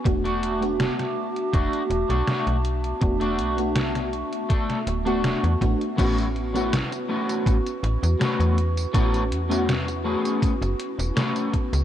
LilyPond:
<<
  \new Staff \with { instrumentName = "Ambient pad" } { \time 4/4 \key a \major \tempo 4 = 81 << { d'''1 | cis'''1 | cis'''1~ | cis'''1 | } \\ { <fis' e'' a''>1~ | <fis' e'' a''>1 | <fis' b'>1~ | <fis' b'>1 | } >> }
  \new Staff \with { instrumentName = "FM electric piano" } { \time 4/4 \key a \major <a b d' fis'>8. <a b d' fis'>2.~ <a b d' fis'>16 | <a b d' fis'>8. <a b d' fis'>2 <a b d' fis'>8. <a b d' fis'>8 | <b cis' e' fis'>8. <b cis' e' fis'>2.~ <b cis' e' fis'>16 | <b cis' e' fis'>8. <b cis' e' fis'>2.~ <b cis' e' fis'>16 | }
  \new Staff \with { instrumentName = "Clean electric guitar" } { \time 4/4 \key a \major r16 <a d' fis'>8 r4 r16 <a d' fis'>8 r16 <a d' fis'>8. r8 | r16 <a d' fis'>8 r4 r16 <a d' a'>8 r16 <a d' fis'>8. r8 | <a b cis' fis'>8 r16 <a b cis' fis'>16 r8 <a b cis' fis'>8 r4 <a b cis' fis'>8 r8 | <a b cis' a'>8 r16 <a b cis' fis'>16 r8 <a b cis' gis'>8 r4 <a b cis' a'>8 r8 | }
  \new Staff \with { instrumentName = "FM bass" } { \clef bass \time 4/4 \key a \major e,,4~ e,,16 r8. e,,16 r16 e,,16 b,,16 r16 b,,8. | e,,8 b,,4~ b,,16 r8. d,,8. e,16 a,,16 r16 | a,,4~ a,,16 r8. a,,16 r16 a,,16 e,16 r16 e,8. | a,,8 e,4~ e,16 r8 fis,,16 r16 e,,16 r8. cis,16 | }
  \new DrumStaff \with { instrumentName = "Drums" } \drummode { \time 4/4 <hh bd>16 hh16 hh16 hh16 <hh sn>16 <hh sn>8 hh16 <hh bd>16 hh16 hh16 hh16 <hh sn>16 hh16 hh16 hh16 | <hh bd>16 hh16 hh16 hh16 <hh sn>16 <hh sn>16 hh16 hh16 <hh bd>16 <hh sn>16 hh16 hh16 <hh sn>16 hh16 <hh bd>16 hh16 | <cymc hh bd tamb>16 <hh tamb>16 hh16 <hh tamb>16 <hh sn tamb>16 <hh tamb>8 <hh tamb>16 <hh bd tamb>16 <hh tamb>16 hh16 <hh tamb>16 <hh sn tamb>16 <hh tamb>16 hh16 <hh tamb>16 | <hh bd tamb>16 <hh tamb>16 hh16 <hh tamb>16 <hh sn tamb>16 <hh tamb>8 <hh tamb>16 <hh bd tamb>16 <hh tamb>16 hh16 <hh tamb>16 <hh sn tamb>16 <hh tamb>16 <hh bd>16 <hh tamb>16 | }
>>